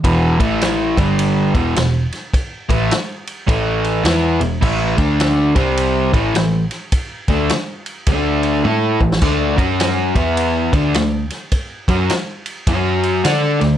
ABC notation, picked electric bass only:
X:1
M:4/4
L:1/8
Q:"Swing" 1/4=104
K:A
V:1 name="Picked electric bass" clef=bass
E,,, A,,,2 =G,,,2 E,,, E,,, z | z A,,, z2 A,,,2 E,, E,,, | A,,, D,,2 =C,,2 A,,, A,,, z | z D,, z2 D,,2 A,, A,,, |
D,, F,,2 E,,2 D,, D,, z | z F,, z2 F,,2 D, D,, |]